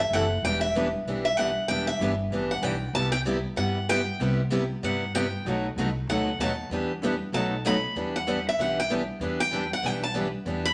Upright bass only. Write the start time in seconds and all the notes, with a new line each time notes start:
0.10 F#1
0.42 E1
1.05 B1
1.68 E1
1.99 G1
2.30 A1
2.61 B1
2.93 C2
3.57 G2
4.19 C2
4.82 G2
5.45 B1
5.76 C2
6.07 D2
6.39 D#2
6.70 E2
7.32 B1
7.95 E2
8.58 B1
9.20 E2
9.82 B1
10.45 E2